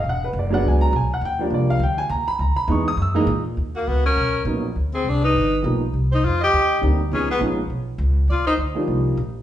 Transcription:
0.04 E1
0.09 F#5
0.24 B4
0.33 F#1
0.39 D5
0.50 F#3 G#3 B3 D4 F#5
0.63 C#2
0.68 G#5
0.81 A#5
0.93 B1 G#5
1.02 G#1
1.12 E1 F#5
1.21 D#2
1.25 G5
1.39 F3 G3 A#3 D4 A#4
1.50 C2 D5
1.70 F5
1.79 D2
1.83 G5
1.98 G#5
2.09 D#2 A#5
2.28 B5, muted upright bass stroke
2.39 C#2 A#5
2.56 B5, muted upright bass stroke
2.68 E2 E3 G#3 B3 D#4 C#6
2.88 D#6
2.97 F#2
3.02 E6
3.14 E3 G#3 A#3 D#4
3.27 A#2
3.57 D#2
3.75 A#3 F#4
3.87 C#2 B3 F#4
4.06 C#4 A#4
4.17 B1
4.45 A#1 F#3 A#3 B3 C#4 D#4
4.76 D2
4.94 C4 G#4
5.04 C2 G#4
5.09 D4
5.24 D#4 B4
5.35 G1
5.62 B1 F3 G3 A#3 B3 D#4
5.94 C2
6.12 D#4 C5
6.23 F2 F4 C5
6.41 G4 D#5
6.53 D#2
6.81 D2 D3 G3 A#3 C4 D#4
7.10 C#2 F3 G#3 B3 C#4 D#4 G#4
7.30 B3 G#4
7.39 A#1 F3 G#3 B3 C#4 D#4
7.70 B1
7.98 C#2
8.28 D#2 F4 D5
8.46 D#4 C5, muted upright bass stroke
8.57 D2
8.75 F3 G3 A#3 D4 D#4
8.87 C2
9.17 A#1

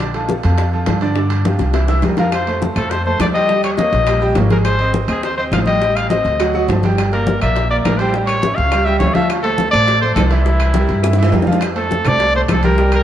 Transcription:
Already playing: A#1 D5
0.00 high bongo, high conga, high timbale
0.14 F3 F4 A4, high conga, high timbale
0.28 high bongo, high conga, low timbale
0.43 F2 F3 F4 A4, high conga, high timbale
0.58 high bongo, high conga, high timbale
0.73 F3 F4 A4, high conga
0.86 G2, high bongo, low bongo, high conga, high timbale, low timbale
1.01 D3 D4 D5, high timbale
1.16 D3 D4 D5, high bongo, high conga
1.30 high bongo, high conga, high timbale
1.45 F3 F4 G4, high bongo, high conga, high timbale, low timbale
1.59 C2, high bongo, high conga, high timbale
1.73 E3 E4 E5, high bongo, high conga, high timbale
1.88 E3 E4 E5, low bongo, high conga
2.02 F2 G3 G4 A#4, low bongo, high conga, high timbale, low timbale
2.17 F3 F4 A#4 F5, low bongo, high conga, high timbale
2.32 C5, high bongo, high conga, high timbale, claves
2.47 A3 A4 C5, high conga, high timbale
2.61 high bongo, high conga, low timbale
2.76 F2 A3 A4 C5, high conga, high timbale, claves
2.90 C5, high bongo, high conga, high timbale
3.05 A3 A4 C5, high conga
3.19 D#2 D5, high bongo, low bongo, high conga, high timbale, low timbale, claves
3.34 G3 G4 D#5 G5, high timbale
3.49 G3 G4 G5, high bongo, high conga
3.63 C#5, high bongo, high conga, high timbale, claves
3.77 A#3 A#4 C#5 D#5, high bongo, high conga, high timbale, low timbale
3.93 A#1, high bongo, high conga, high timbale
4.07 G3 G4 G5, high bongo, high conga, high timbale, claves
4.21 G3 G4 G5, high bongo, high conga
4.35 G#1 A#3 A#4 C#5, high bongo, low bongo, high conga, high timbale, low timbale
4.50 G#3 G#4 A#4 G#5, high conga, high timbale
4.65 C5, high bongo, high conga, high timbale, claves
4.79 C4 C5 D#5, high conga, high timbale
4.94 high bongo, high conga, low timbale
5.08 D#2 C4 G#4 C5 D#5, high conga, high timbale, claves
5.23 C5, high bongo, high conga, high timbale
5.38 C4 C5 D#5, high conga
5.52 A1 F5, high bongo, low bongo, high conga, high timbale, low timbale, claves
5.66 G3 G4 D#5 G5, high conga, high timbale
5.81 G3 G4 G5, high bongo, high conga
5.96 F5, high bongo, high conga, high timbale, claves
6.10 C4 C5 D#5, high bongo, high conga, high timbale, low timbale
6.24 D2, high bongo, high conga, high timbale
6.40 F#3 F#4 F#5, high bongo, high conga, high timbale, claves
6.54 F#3 F#4 F#5, high bongo, high conga
6.68 G1 A3 A4 C5, high bongo, low bongo, high conga, high timbale, low timbale
6.83 G3 G4 G5, high conga, high timbale
6.98 high bongo, high conga, high timbale, claves
7.12 A#3 A#4 D5, high conga, high timbale
7.27 high bongo, high conga, low timbale
7.41 A#1 A#3 A#4 D5 E5, high conga, high timbale, claves
7.56 high bongo, high conga, high timbale
7.70 A#3 A#4 D5, high conga
7.85 A1 A#4, high bongo, low bongo, high conga, high timbale, low timbale, claves
7.98 G3 G4 C5 G5, high timbale
8.14 G3 G4 G5, high bongo, high conga
8.27 C#5, high bongo, high conga, high timbale, claves
8.42 C#4 C#5 E5, high bongo, high conga, high timbale, low timbale
8.56 C#2 F5, high bongo, high conga, high timbale
8.72 G3 G4 G5, high bongo, high conga, high timbale, claves
8.85 G3 G4 E5 G5, high bongo, high conga
8.99 D2 C#4 C#5 E5, high bongo, low bongo, high conga, high timbale, low timbale
9.14 F3 F4 E5 F5, high conga, high timbale
9.29 high bongo, high conga, high timbale, claves
9.43 A3 A4 C5, high conga, high timbale
9.58 high bongo, high conga, low timbale
9.71 A1 A3 A4 C5 D5, high conga, high timbale, claves
9.87 high bongo, high conga, high timbale
10.01 A3 A4 C5, high conga
10.15 C2 A4, high bongo, low bongo, high conga, high timbale, low timbale, claves
10.31 E3 E4 E5, high timbale
10.45 E3 E4 E5, high bongo, high conga
10.60 high bongo, high conga, high timbale, claves
10.74 G3 G4 A#4, high bongo, high conga, high timbale, low timbale
10.89 G2, high bongo, high conga, high timbale
11.02 E3 E4 E5, high bongo, high conga, high timbale, claves
11.13 low bongo
11.18 E3 E4 E5, high conga
11.23 low bongo, low timbale
11.32 F2 G3 G4 A#4, low bongo, high conga, low timbale
11.42 low bongo, low timbale
11.46 F3 F4 F5, high conga
11.52 low bongo, low timbale
11.61 high bongo, high conga, high timbale, claves
11.76 A3 A4 C5, high conga, high timbale
11.90 high bongo, high conga, low timbale
12.05 C2 A3 A4 C5 D5, high conga, low conga, high timbale, claves
12.20 high bongo, high timbale
12.34 A3 A4 C5, high conga
12.48 C2 A4, high bongo, low bongo, high conga, high timbale, low timbale, claves
12.63 G3 G4 A#4 G5, high conga, high timbale
12.78 G3 G4 G5, high bongo, high conga
12.92 A#4, high bongo, high conga, high timbale, claves

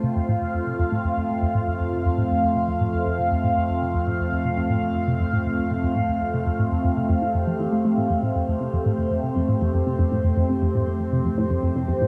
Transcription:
Already playing: A3 C4 F4
0.03 F2 C3 F5
0.16 F2
0.29 A2
0.41 F2
0.54 F2
0.66 C3
0.79 F2
0.92 A2
1.04 F2
1.17 F2
1.29 C3
1.42 F2
1.55 A2
1.67 F2
1.80 F2
1.93 C3
2.05 F2
2.18 A2
2.30 F2
2.43 F2
2.55 C3
2.68 F2
2.81 A2
2.93 F2
3.06 F2
3.19 C3
3.31 F2
3.44 A2
3.56 F2
3.69 F2
3.82 C3
3.94 F2
4.07 A2
4.20 F2
4.32 F2
4.45 C3
4.57 F2
4.70 A2
4.82 F2
4.95 F2
5.08 C3
5.20 F2
5.33 A2
5.46 F2
5.58 F2
5.71 C3
5.83 F2
5.96 A2
6.09 F2
6.21 F2
6.34 C3
6.47 F2
6.59 A2
6.72 F2
6.84 F2
6.97 C3
7.09 F2 G4
7.22 A2
7.35 F2
7.47 F3
7.60 E3
7.72 A3
7.85 A3
7.98 A2
8.10 F2 C5
8.23 A2
8.36 F2
8.48 F2
8.61 C3
8.73 F2
8.86 A2
8.98 F2
9.11 F2
9.24 C3
9.36 F2
9.49 A2
9.61 F2
9.74 F2
9.86 C3
9.99 F2
10.12 A2
10.24 F2
10.37 F2
10.49 C3
10.62 F2
10.75 A2
10.87 F2
11.00 F2
11.13 C3
11.25 F2
11.38 A2
11.51 F2
11.63 F2
11.76 C3
11.88 F2
12.01 A2

